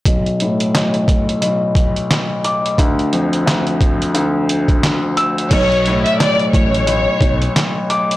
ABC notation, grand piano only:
X:1
M:4/4
L:1/8
Q:"Swing 16ths" 1/4=88
K:Bm
V:1 name="Grand piano" clef=bass
B,,, A,, B,,,2 B,,,3 d' | D,, =F,, D,,2 D,,3 e' | B,,, A,, B,,,2 B,,,3 d' |]